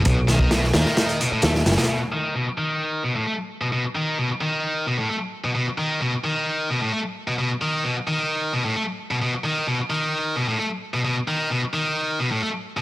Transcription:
0.05 0.71 B1 loud
0.05 0.16 B2 medium
0.05 kick loud
0.05 closed hi-hat loud
0.28 0.50 D#3 medium
0.28 snare soft
0.28 closed hi-hat medium
0.39 kick medium
0.51 0.61 B2 loud
0.51 snare loud
0.51 closed hi-hat medium
0.64 snare soft
0.74 0.84 D#2 medium
0.74 1.19 D#3 medium
0.74 snare loud
0.74 closed hi-hat medium
0.86 snare medium
0.97 snare loud
0.97 closed hi-hat medium
1.09 closed hi-hat soft
1.20 1.30 B2 loud
1.20 closed hi-hat medium
1.32 1.42 A2 loud
1.32 muted picked electric bass stroke soft
1.42 1.62 D#2 medium
1.42 1.49 A3 loud
1.42 snare loud
1.42 closed hi-hat medium
1.55 snare medium
1.66 1.76 F#1 loud
1.66 snare medium
1.66 closed hi-hat medium
1.72 snare medium
1.72 closed hi-hat medium
1.78 1.84 B2 medium
1.78 snare medium
1.78 closed hi-hat medium
1.83 snare medium
1.83 closed hi-hat medium
1.89 1.99 B2 medium
2.12 2.34 D#3 medium
2.35 2.45 B2 medium
2.58 3.02 D#3 medium
3.04 3.14 B2 medium
3.16 3.25 A2 medium
3.26 3.32 A3 medium
3.61 3.67 B2 medium
3.73 3.82 B2 medium
3.95 4.17 D#3 medium
4.18 4.28 B2 medium
4.41 4.86 D#3 medium
4.87 4.97 B2 medium
4.99 5.08 A2 medium
5.09 5.15 A3 medium
5.44 5.50 B2 medium
5.55 5.65 B2 medium
5.78 6.00 D#3 medium
6.01 6.11 B2 medium
6.24 6.69 D#3 medium
6.70 6.80 B2 medium
6.82 6.91 A2 medium
6.93 6.99 A3 medium
7.28 7.33 B2 medium
7.39 7.49 B2 medium
7.61 7.83 D#3 medium
7.84 7.94 B2 medium
8.07 8.52 D#3 medium
8.53 8.63 B2 medium
8.65 8.74 A2 medium
8.76 8.82 A3 medium
9.11 9.16 B2 medium
9.22 9.32 B2 medium
9.44 9.66 D#3 medium
9.67 9.77 B2 medium
9.90 10.35 D#3 medium
10.36 10.46 B2 loud
10.48 10.58 A2 medium
10.59 10.65 A3 medium
10.94 10.99 B2 medium
11.05 11.15 B2 medium
11.28 11.50 D#3 medium
11.51 11.61 B2 medium
11.74 12.18 D#3 medium
12.19 12.30 B2 medium
12.31 12.41 A2 medium
12.42 12.48 A3 loud
12.77 12.82 B2 medium

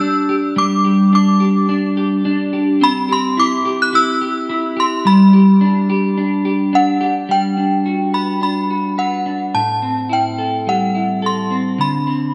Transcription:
0.00 0.56 G3 medium
0.00 1.12 D4 medium
0.00 0.29 G4 medium
0.00 0.60 E6 loud
0.29 0.84 G4 medium
0.56 4.06 G3 medium
0.56 1.14 D6 medium
0.84 1.40 G4 medium
1.13 1.68 D4 medium
1.13 2.22 D6 medium
1.40 1.97 G4 medium
1.69 2.24 D4 medium
1.97 2.53 G4 medium
2.25 2.87 D4 medium
2.53 3.08 G4 medium
2.81 5.05 C4 medium
2.81 3.11 B5 loud
3.09 3.65 G4 medium
3.09 3.40 C6 medium
3.37 3.92 E4 medium
3.37 3.82 D6 loud
3.65 4.21 G4 medium
3.82 3.95 F#6 loud
3.93 4.48 E4 medium
3.93 4.81 E6 loud
4.21 4.76 G4 medium
4.49 5.11 E4 medium
4.77 5.33 G4 medium
4.77 5.07 C6 medium
5.05 7.29 G3 medium
5.05 6.70 B5 medium
5.33 5.89 G4 medium
5.61 6.17 D4 medium
5.90 6.45 G4 medium
6.18 6.73 D4 medium
6.45 7.00 G4 medium
6.73 7.57 D4 medium
6.73 7.32 F#5 medium
7.01 7.85 G4 medium
7.29 9.57 G3 medium
7.29 8.17 G5 medium
7.57 8.40 D4 soft
7.86 8.69 F#4 medium
8.14 8.97 B4 soft
8.14 8.42 B5 medium
8.41 9.25 D4 soft
8.41 9.00 B5 medium
8.70 9.60 F#4 soft
8.98 9.60 B4 medium
8.98 9.56 F#5 medium
9.26 9.60 D4 medium
9.54 11.78 A2 medium
9.54 10.12 A5 medium
9.82 11.50 C4 soft
10.09 10.94 E4 medium
10.09 10.69 G5 medium
10.38 11.22 A4 medium
10.67 11.84 G3 medium
10.67 11.25 F#5 medium
10.95 11.84 E4 soft
11.22 12.34 A4 medium
11.22 11.82 C6 medium
11.51 12.07 C4 medium
11.78 12.34 D3 medium
11.78 12.34 B5 medium
12.07 12.34 C4 soft

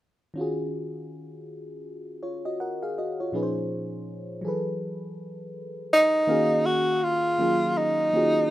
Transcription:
0.34 3.27 D#3 medium
0.34 3.28 C#4 medium
0.34 2.18 F4 medium
0.39 2.19 F#4 medium
0.39 2.20 G#4 medium
2.23 2.43 F4 soft
2.23 2.42 C#5 medium
2.45 2.58 F#4 soft
2.45 2.58 D#5 medium
2.60 2.80 A#4 soft
2.60 2.80 F#5 medium
2.83 2.96 G#4 soft
2.83 2.95 F5 medium
2.98 3.18 F#4 soft
2.98 3.17 D#5 soft
3.20 3.54 F4 soft
3.20 3.54 C#5 soft
3.32 4.43 A#2 medium
3.32 4.44 F3 medium
3.32 4.44 C#4 medium
3.32 4.44 D#4 medium
3.32 4.44 G#4 medium
3.32 3.42 B4 soft
3.43 4.48 C5 medium
4.41 6.24 E3 medium
4.41 6.23 F#3 medium
4.41 6.25 G#4 soft
4.47 6.26 A4 medium
4.47 6.27 B4 medium
5.93 6.67 D#4 medium
6.27 7.27 D#3 medium
6.27 7.27 A#3 medium
6.27 7.28 C#4 medium
6.27 7.28 F#4 medium
6.27 7.29 G#4 medium
6.27 7.28 F5 medium
6.66 7.05 F#4 medium
7.03 7.79 F4 medium
7.38 8.05 D#3 medium
7.38 8.06 F#3 medium
7.38 8.05 A#3 medium
7.38 8.06 C#4 soft
7.38 8.06 F4 soft
7.38 8.07 G#4 medium
7.78 8.50 D#4 medium
8.13 8.50 D#3 medium
8.13 8.50 A#3 medium
8.13 8.50 C#4 medium
8.13 8.50 F4 medium
8.13 8.50 F#4 medium
8.13 8.50 G#4 medium

